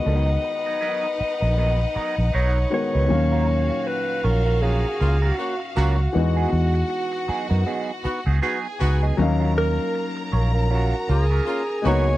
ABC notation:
X:1
M:4/4
L:1/16
Q:"Swing 16ths" 1/4=79
K:Ebm
V:1 name="Violin section"
[Ecg]16 | [Gf]16 | [^F^f]12 [^G^g]4 | [Bb]12- [Bb]2 [Aa]2 |]
V:2 name="Alto saxophone"
e12 d2 d2- | d4 c2 B2 A3 G3 G2- | G8- G2 z6 | z2 B4 z2 G2 A4 d2 |]
V:3 name="Clean electric guitar"
[G,CEB] z2 [G,CEB] [G,CEB] z2 [G,CEB] [G,CEB] z [G,CEB] z [G,CEB] z2 [G,CEc] | z [G,DFB] z4 [G,DFd] [G,DFB] [G,DFB] z2 [G,DFB] z2 [G,DFB] z | z [^F,=B,^D^G] z4 [F,B,DG] [F,B,D_B] [F,=B,DG] z2 [F,B,DG] [F,B,DG] z2 [F,B,DG] | z [G,DFB] z4 [G,DFd] [G,DFB] [G,DFB] z2 [G,DFB] z2 [G,CEB] z |]
V:4 name="Horn section"
z16 | z8 z2 [B,DF] z [B,DG] z [B,DG]2 | z8 z2 [=B,^D^F] z [B,DF] z [B,DF]2 | z8 z2 [B,DF] z [B,DF] z [CEG]2 |]
V:5 name="Grand piano"
[E,A,CGB]12- [E,A,CGB]2 [E,A,CGB]2 | [B,,E,G,Df]16 | [=E,^G,=B,^D^F]16 | [G,B,DEf]12- [G,B,DEf]2 [A,B,CEG]2 |]
V:6 name="Fingered electric bass" clef=bass
D,,2 z4 z B,,,3 z B,,, C,,2 z D,, | E,,4 z2 B,,,4 D,,2 z2 D,,2 | =E,,2 E,,2 z3 ^F,, z3 D,, z2 D,,2 | E,,4 z2 B,,,4 D,,2 z2 D,,2 |]